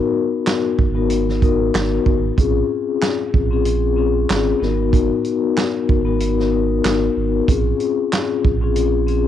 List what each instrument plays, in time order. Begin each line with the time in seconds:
Already playing: vibraphone B3 D#4 F#4 A#4
0.47 snare, clap, closed hi-hat
0.79 sub bass G#1, kick
0.95 vibraphone B3 D#4 F#4 A#4
1.10 closed hi-hat
1.29 snare
1.41 vibraphone B3 D#4 F#4 A#4, kick, closed hi-hat
1.74 sub bass G#1, snare, clap, closed hi-hat
2.06 sub bass G#1, kick
2.37 sub bass A#1, vibraphone C4 C#4 F4 G#4, kick, closed hi-hat
3.02 snare, clap, closed hi-hat
3.34 sub bass A#1, kick
3.51 vibraphone C4 C#4 F4 G#4
3.65 closed hi-hat
3.96 vibraphone C4 C#4 F4 G#4
4.29 sub bass G#1, snare, clap, closed hi-hat
4.60 sub bass G#1, vibraphone B3 D#4 F#4 A#4, snare
4.92 vibraphone B3 D#4 F#4 A#4, kick, closed hi-hat
5.25 closed hi-hat
5.57 snare, clap, closed hi-hat
5.89 sub bass G#1, kick
6.05 vibraphone B3 D#4 F#4 A#4
6.20 closed hi-hat
6.40 snare
6.52 vibraphone B3 D#4 F#4 A#4
6.85 sub bass G#1, snare, clap, closed hi-hat
7.16 sub bass G#1
7.47 sub bass A#1, vibraphone C4 C#4 F4 G#4, kick, closed hi-hat
7.80 closed hi-hat
8.12 snare, clap, closed hi-hat
8.45 sub bass A#1, kick
8.61 vibraphone C4 C#4 F4 G#4
8.76 closed hi-hat
9.07 vibraphone C4 C#4 F4 G#4, closed hi-hat